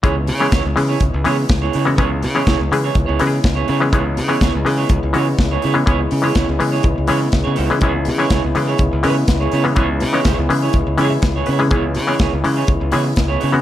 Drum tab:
HH |xoxoxoxo|xoxoxoxo|xoxoxoxo|xoxoxoxo|
SD |--o---o-|--o---o-|--o---o-|--o---o-|
BD |o-o-o-o-|o-o-o-o-|o-o-o-o-|o-o-o-o-|

HH |xoxoxoxo|xoxoxoxo|xoxoxoxo|
SD |--o---o-|--o---o-|--o---o-|
BD |o-o-o-o-|o-o-o-o-|o-o-o-o-|